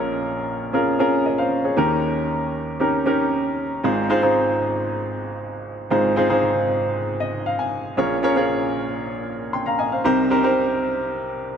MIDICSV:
0, 0, Header, 1, 2, 480
1, 0, Start_track
1, 0, Key_signature, -4, "major"
1, 0, Tempo, 517241
1, 1644, Time_signature, 4, 2, 24, 8
1, 10738, End_track
2, 0, Start_track
2, 0, Title_t, "Grand piano"
2, 0, Program_c, 0, 0
2, 0, Control_c, 0, 64, 127
2, 0, Note_on_c, 0, 34, 68
2, 0, Note_on_c, 0, 46, 67
2, 0, Note_on_c, 0, 61, 80
2, 0, Note_on_c, 0, 65, 72
2, 0, Note_on_c, 0, 68, 70
2, 0, Note_on_c, 0, 70, 92
2, 402, Note_off_c, 0, 61, 0
2, 404, Note_off_c, 0, 65, 0
2, 405, Note_off_c, 0, 68, 0
2, 436, Note_off_c, 0, 70, 0
2, 678, Note_on_c, 0, 61, 71
2, 683, Note_on_c, 0, 65, 70
2, 686, Note_on_c, 0, 68, 69
2, 690, Note_on_c, 0, 70, 81
2, 851, Note_off_c, 0, 61, 0
2, 853, Note_off_c, 0, 65, 0
2, 855, Note_off_c, 0, 68, 0
2, 857, Note_off_c, 0, 70, 0
2, 920, Note_on_c, 0, 61, 82
2, 923, Note_on_c, 0, 65, 72
2, 927, Note_on_c, 0, 68, 76
2, 931, Note_on_c, 0, 70, 89
2, 1157, Note_off_c, 0, 70, 0
2, 1166, Note_off_c, 0, 68, 0
2, 1166, Note_on_c, 0, 75, 64
2, 1171, Note_on_c, 0, 70, 57
2, 1280, Note_off_c, 0, 75, 0
2, 1282, Note_off_c, 0, 70, 0
2, 1283, Note_on_c, 0, 77, 71
2, 1289, Note_on_c, 0, 72, 59
2, 1431, Note_off_c, 0, 61, 0
2, 1432, Note_off_c, 0, 65, 0
2, 1512, Note_off_c, 0, 77, 0
2, 1515, Note_off_c, 0, 72, 0
2, 1524, Note_on_c, 0, 73, 61
2, 1530, Note_on_c, 0, 68, 55
2, 1609, Note_off_c, 0, 34, 0
2, 1609, Note_off_c, 0, 46, 0
2, 1639, Note_on_c, 0, 61, 82
2, 1643, Note_on_c, 0, 63, 70
2, 1645, Note_on_c, 0, 39, 70
2, 1645, Note_on_c, 0, 51, 72
2, 1645, Note_on_c, 0, 67, 71
2, 1650, Note_on_c, 0, 70, 88
2, 1656, Control_c, 0, 64, 0
2, 1752, Note_off_c, 0, 73, 0
2, 1755, Note_off_c, 0, 68, 0
2, 1809, Control_c, 0, 64, 127
2, 2320, Note_off_c, 0, 61, 0
2, 2322, Note_off_c, 0, 63, 0
2, 2323, Note_off_c, 0, 67, 0
2, 2325, Note_off_c, 0, 70, 0
2, 2596, Note_on_c, 0, 61, 75
2, 2598, Note_on_c, 0, 63, 66
2, 2603, Note_on_c, 0, 67, 66
2, 2607, Note_on_c, 0, 70, 80
2, 2770, Note_off_c, 0, 61, 0
2, 2771, Note_off_c, 0, 63, 0
2, 2774, Note_off_c, 0, 67, 0
2, 2775, Note_off_c, 0, 70, 0
2, 2838, Note_on_c, 0, 61, 79
2, 2841, Note_on_c, 0, 63, 73
2, 2843, Note_on_c, 0, 67, 72
2, 2847, Note_on_c, 0, 70, 86
2, 3350, Note_off_c, 0, 61, 0
2, 3351, Note_off_c, 0, 63, 0
2, 3353, Note_off_c, 0, 67, 0
2, 3354, Note_off_c, 0, 70, 0
2, 3528, Note_off_c, 0, 39, 0
2, 3528, Note_off_c, 0, 51, 0
2, 3559, Note_on_c, 0, 60, 84
2, 3561, Note_on_c, 0, 63, 73
2, 3565, Note_on_c, 0, 32, 76
2, 3565, Note_on_c, 0, 44, 75
2, 3565, Note_on_c, 0, 65, 77
2, 3568, Note_on_c, 0, 68, 78
2, 3570, Note_on_c, 0, 72, 92
2, 3577, Control_c, 0, 64, 0
2, 3716, Control_c, 0, 64, 127
2, 3731, Note_off_c, 0, 60, 0
2, 3733, Note_off_c, 0, 63, 0
2, 3734, Note_off_c, 0, 65, 0
2, 3736, Note_off_c, 0, 68, 0
2, 3737, Note_off_c, 0, 72, 0
2, 3799, Note_on_c, 0, 60, 90
2, 3802, Note_on_c, 0, 63, 84
2, 3804, Note_on_c, 0, 65, 86
2, 3806, Note_on_c, 0, 68, 86
2, 3810, Note_on_c, 0, 72, 98
2, 3887, Note_off_c, 0, 60, 0
2, 3888, Note_off_c, 0, 63, 0
2, 3889, Note_off_c, 0, 65, 0
2, 3890, Note_off_c, 0, 68, 0
2, 3892, Note_off_c, 0, 72, 0
2, 3917, Note_on_c, 0, 60, 84
2, 3919, Note_on_c, 0, 63, 75
2, 3923, Note_on_c, 0, 65, 75
2, 3924, Note_on_c, 0, 68, 80
2, 3927, Note_on_c, 0, 72, 89
2, 4599, Note_off_c, 0, 60, 0
2, 4600, Note_off_c, 0, 63, 0
2, 4602, Note_off_c, 0, 65, 0
2, 4603, Note_off_c, 0, 68, 0
2, 4604, Note_off_c, 0, 72, 0
2, 5447, Note_off_c, 0, 32, 0
2, 5448, Note_off_c, 0, 44, 0
2, 5479, Note_on_c, 0, 60, 82
2, 5483, Note_on_c, 0, 63, 78
2, 5485, Note_on_c, 0, 32, 72
2, 5485, Note_on_c, 0, 44, 75
2, 5485, Note_on_c, 0, 65, 77
2, 5487, Note_on_c, 0, 68, 76
2, 5491, Note_on_c, 0, 72, 92
2, 5651, Note_off_c, 0, 60, 0
2, 5653, Note_off_c, 0, 63, 0
2, 5654, Note_off_c, 0, 65, 0
2, 5655, Note_off_c, 0, 68, 0
2, 5657, Note_off_c, 0, 72, 0
2, 5718, Note_on_c, 0, 60, 92
2, 5720, Note_on_c, 0, 63, 85
2, 5722, Note_on_c, 0, 65, 83
2, 5726, Note_on_c, 0, 68, 84
2, 5728, Note_on_c, 0, 72, 94
2, 5806, Note_off_c, 0, 60, 0
2, 5807, Note_off_c, 0, 63, 0
2, 5808, Note_off_c, 0, 65, 0
2, 5810, Note_off_c, 0, 68, 0
2, 5811, Note_off_c, 0, 72, 0
2, 5837, Note_on_c, 0, 60, 85
2, 5841, Note_on_c, 0, 63, 81
2, 5843, Note_on_c, 0, 65, 79
2, 5846, Note_on_c, 0, 68, 79
2, 5849, Note_on_c, 0, 72, 95
2, 6519, Note_off_c, 0, 60, 0
2, 6521, Note_off_c, 0, 63, 0
2, 6522, Note_off_c, 0, 65, 0
2, 6524, Note_off_c, 0, 68, 0
2, 6525, Note_off_c, 0, 72, 0
2, 6684, Note_on_c, 0, 75, 76
2, 6908, Note_off_c, 0, 75, 0
2, 6924, Note_on_c, 0, 77, 78
2, 7036, Note_off_c, 0, 77, 0
2, 7043, Note_on_c, 0, 80, 72
2, 7368, Note_off_c, 0, 32, 0
2, 7368, Note_off_c, 0, 44, 0
2, 7378, Note_off_c, 0, 80, 0
2, 7399, Note_on_c, 0, 61, 86
2, 7401, Note_on_c, 0, 65, 77
2, 7404, Note_on_c, 0, 34, 77
2, 7404, Note_on_c, 0, 46, 75
2, 7404, Note_on_c, 0, 68, 79
2, 7408, Note_on_c, 0, 70, 75
2, 7410, Note_on_c, 0, 73, 93
2, 7415, Control_c, 0, 64, 0
2, 7571, Note_off_c, 0, 61, 0
2, 7573, Note_off_c, 0, 65, 0
2, 7574, Note_off_c, 0, 68, 0
2, 7576, Note_off_c, 0, 70, 0
2, 7577, Note_off_c, 0, 73, 0
2, 7599, Control_c, 0, 64, 127
2, 7637, Note_on_c, 0, 61, 88
2, 7639, Note_on_c, 0, 65, 85
2, 7642, Note_on_c, 0, 68, 81
2, 7645, Note_on_c, 0, 70, 80
2, 7648, Note_on_c, 0, 73, 100
2, 7726, Note_off_c, 0, 61, 0
2, 7726, Note_off_c, 0, 65, 0
2, 7728, Note_off_c, 0, 68, 0
2, 7730, Note_off_c, 0, 70, 0
2, 7731, Note_off_c, 0, 73, 0
2, 7755, Note_on_c, 0, 61, 81
2, 7760, Note_on_c, 0, 65, 80
2, 7761, Note_on_c, 0, 68, 80
2, 7765, Note_on_c, 0, 70, 77
2, 7768, Note_on_c, 0, 73, 91
2, 8438, Note_off_c, 0, 61, 0
2, 8440, Note_off_c, 0, 65, 0
2, 8441, Note_off_c, 0, 68, 0
2, 8443, Note_off_c, 0, 70, 0
2, 8444, Note_off_c, 0, 73, 0
2, 8846, Note_on_c, 0, 84, 65
2, 8852, Note_on_c, 0, 79, 56
2, 8959, Note_off_c, 0, 84, 0
2, 8962, Note_off_c, 0, 79, 0
2, 8964, Note_on_c, 0, 82, 69
2, 8970, Note_on_c, 0, 77, 61
2, 9078, Note_off_c, 0, 82, 0
2, 9081, Note_off_c, 0, 77, 0
2, 9082, Note_on_c, 0, 80, 70
2, 9089, Note_on_c, 0, 75, 58
2, 9197, Note_off_c, 0, 80, 0
2, 9201, Note_off_c, 0, 75, 0
2, 9206, Note_on_c, 0, 77, 69
2, 9210, Note_on_c, 0, 72, 54
2, 9287, Note_off_c, 0, 34, 0
2, 9287, Note_off_c, 0, 46, 0
2, 9316, Note_off_c, 0, 72, 0
2, 9320, Note_on_c, 0, 60, 89
2, 9322, Note_on_c, 0, 63, 79
2, 9325, Note_on_c, 0, 48, 79
2, 9326, Note_on_c, 0, 36, 75
2, 9326, Note_on_c, 0, 67, 80
2, 9328, Note_on_c, 0, 70, 79
2, 9330, Note_on_c, 0, 72, 98
2, 9336, Control_c, 0, 64, 0
2, 9433, Note_off_c, 0, 77, 0
2, 9492, Note_off_c, 0, 60, 0
2, 9493, Note_off_c, 0, 63, 0
2, 9495, Note_off_c, 0, 67, 0
2, 9496, Note_off_c, 0, 70, 0
2, 9497, Note_off_c, 0, 72, 0
2, 9518, Control_c, 0, 64, 127
2, 9561, Note_on_c, 0, 60, 90
2, 9563, Note_on_c, 0, 63, 80
2, 9566, Note_on_c, 0, 67, 81
2, 9569, Note_on_c, 0, 70, 84
2, 9572, Note_on_c, 0, 72, 100
2, 9648, Note_off_c, 0, 60, 0
2, 9648, Note_off_c, 0, 63, 0
2, 9650, Note_off_c, 0, 67, 0
2, 9651, Note_off_c, 0, 70, 0
2, 9653, Note_off_c, 0, 72, 0
2, 9681, Note_on_c, 0, 60, 89
2, 9683, Note_on_c, 0, 63, 78
2, 9686, Note_on_c, 0, 67, 78
2, 9688, Note_on_c, 0, 70, 82
2, 9691, Note_on_c, 0, 72, 93
2, 10361, Note_off_c, 0, 60, 0
2, 10362, Note_off_c, 0, 63, 0
2, 10364, Note_off_c, 0, 67, 0
2, 10365, Note_off_c, 0, 70, 0
2, 10366, Note_off_c, 0, 72, 0
2, 10738, Note_off_c, 0, 36, 0
2, 10738, Note_off_c, 0, 48, 0
2, 10738, End_track
0, 0, End_of_file